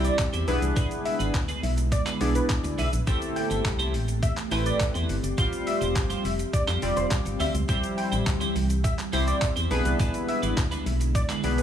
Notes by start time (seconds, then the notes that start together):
Already playing: C3 E3 G3 C4 E4 G4 D5, impact
0.04 C4 E4 G4 C5 D5, closed hi-hat, shaker
0.19 muted clean electric guitar stroke, kick, clap, closed hi-hat, shaker
0.33 E2 C4 E4 G4 C5, closed hi-hat, shaker
0.48 B1 D3 G#3 B3 D4 E4 G#4 B4, open hi-hat, shaker
0.62 C2, muted clean electric guitar stroke, closed hi-hat, shaker
0.76 B1 B3 D4 G#4 B4, kick, closed hi-hat, shaker
0.91 muted clean electric guitar stroke, closed hi-hat, shaker
1.05 E5, muted clean electric guitar stroke, open hi-hat, shaker
1.19 G#1 B3 D4 G#4 B4, closed hi-hat, shaker
1.34 D2, muted clean electric guitar stroke, kick, clap, closed hi-hat, shaker
1.48 B3 D4 G#4 B4, closed hi-hat, shaker
1.63 B1, muted clean electric guitar stroke, open hi-hat, shaker
1.77 muted clean electric guitar stroke, closed hi-hat, shaker
1.91 D5, muted clean electric guitar stroke, kick, closed hi-hat, shaker
2.06 B3 D4 G#4 B4, clap, closed hi-hat, shaker
2.20 B1 B3 D4 E4 G#4 D5, muted clean electric guitar stroke, open hi-hat, shaker
2.35 B4, muted clean electric guitar stroke, closed hi-hat, shaker
2.50 kick, clap, closed hi-hat, shaker
2.64 D2, muted clean electric guitar stroke, closed hi-hat, shaker
2.78 B1 B3 D4 G#4 B4 E5, open hi-hat, shaker
2.93 A#1, muted clean electric guitar stroke, closed hi-hat, shaker
3.07 A1 E3 A3 C4 E4 G4 A4 C5, kick, closed hi-hat, shaker
3.21 muted clean electric guitar stroke, closed hi-hat, shaker
3.36 G5, muted clean electric guitar stroke, open hi-hat, shaker
3.50 G1 C4 E4 G4 C5, closed hi-hat, shaker
3.65 C2, muted clean electric guitar stroke, kick, clap, closed hi-hat, shaker
3.79 C4 E4 G4 C5, closed hi-hat, shaker
3.94 A1, muted clean electric guitar stroke, open hi-hat, shaker
4.08 muted clean electric guitar stroke, closed hi-hat, shaker
4.22 E5, muted clean electric guitar stroke, kick, closed hi-hat, shaker
4.37 muted clean electric guitar stroke, clap, closed hi-hat, shaker
4.51 A1 A3 C4 E4 G4 B4 C5, open hi-hat, shaker
4.66 C4 E4 G4 C5 D5, closed hi-hat, shaker
4.80 kick, clap, closed hi-hat, shaker
4.94 E2 C4 E4 G4 C5, closed hi-hat, shaker
5.09 G1, muted clean electric guitar stroke, open hi-hat, shaker
5.23 F#1, muted clean electric guitar stroke, closed hi-hat, shaker
5.38 F1 F3 G3 C4 F4 G4 C5, kick, closed hi-hat, shaker
5.52 muted clean electric guitar stroke, closed hi-hat, shaker
5.67 E5, muted clean electric guitar stroke, open hi-hat, shaker
5.81 E1 C4 F4 G4 C5, closed hi-hat, shaker
5.96 G1, kick, clap, closed hi-hat, shaker
6.10 C4 F4 G4 C5, closed hi-hat, shaker
6.24 F1, muted clean electric guitar stroke, open hi-hat, shaker
6.39 muted clean electric guitar stroke, closed hi-hat, shaker
6.53 D5, muted clean electric guitar stroke, kick, closed hi-hat, shaker
6.67 F2 C4 F4 G4 C5, clap, closed hi-hat, shaker
6.82 F1 G3 C4 F4 G4 D5, muted clean electric guitar stroke, open hi-hat, shaker
6.97 F1 C5, muted clean electric guitar stroke, closed hi-hat, shaker
7.11 kick, clap, closed hi-hat, shaker
7.25 G1, muted clean electric guitar stroke, closed hi-hat, shaker
7.40 D2 C4 F4 G4 C5 E5, open hi-hat, shaker
7.54 C#2, muted clean electric guitar stroke, closed hi-hat, shaker
7.68 C2 E3 G3 C4 E4 G4 C5, kick, closed hi-hat, shaker
7.83 muted clean electric guitar stroke, closed hi-hat, shaker
7.97 G5, muted clean electric guitar stroke, open hi-hat, shaker
8.12 A1 C4 E4 G4 C5, closed hi-hat, shaker
8.26 D2, muted clean electric guitar stroke, kick, clap, closed hi-hat, shaker
8.40 C4 E4 G4 C5, closed hi-hat, shaker
8.55 C2, muted clean electric guitar stroke, open hi-hat, shaker
8.69 muted clean electric guitar stroke, closed hi-hat, shaker
8.84 E5, muted clean electric guitar stroke, kick, closed hi-hat, shaker
8.98 muted clean electric guitar stroke, clap, closed hi-hat, shaker
9.13 C2 G3 C4 E4 G4 C5, open hi-hat, shaker
9.27 C4 E4 G4 C5 D5, closed hi-hat, shaker
9.42 kick, clap, closed hi-hat, shaker
9.56 E2 C4 E4 G4 C5, closed hi-hat, shaker
9.71 B1 D3 G#3 B3 D4 E4 G#4 B4, muted clean electric guitar stroke, open hi-hat, shaker
9.85 C2, muted clean electric guitar stroke, closed hi-hat, shaker
9.99 B1 G#3 D4 E4 B4, kick, closed hi-hat, shaker
10.14 muted clean electric guitar stroke, closed hi-hat, shaker
10.28 E5, muted clean electric guitar stroke, open hi-hat, shaker
10.42 G#1 G#3 D4 E4 B4, closed hi-hat, shaker
10.57 D2, muted clean electric guitar stroke, kick, clap, closed hi-hat, shaker
10.71 G#3 D4 E4 B4, closed hi-hat, shaker
10.86 B1, muted clean electric guitar stroke, open hi-hat, shaker
11.00 muted clean electric guitar stroke, closed hi-hat, shaker
11.15 D5, muted clean electric guitar stroke, kick, closed hi-hat, shaker
11.29 G#3 D4 E4 B4, clap, closed hi-hat, shaker
11.44 B1 B3 D4 E4 G#4 B4, muted clean electric guitar stroke, open hi-hat, shaker
11.58 B4, muted clean electric guitar stroke, closed hi-hat, shaker